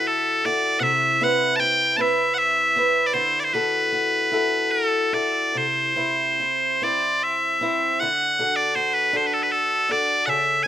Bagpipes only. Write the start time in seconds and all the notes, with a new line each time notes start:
0.07 A4
0.45 D5
0.80 E5 F#5
1.24 F#5
1.56 G5 A5
1.97 A5
2.01 E5
2.34 F#5
2.38 E5
3.06 D5
3.14 C5
3.40 D5
3.44 C5
3.53 B4
4.71 A4
5.14 D5
5.58 C5
6.84 D5
7.23 E5
8.00 F#5
8.56 D5
8.75 C5
8.94 B4
9.17 C5
9.27 B4
9.33 A4
9.43 B4
9.51 A4
9.91 D5
10.26 E5 F#5
10.63 G#5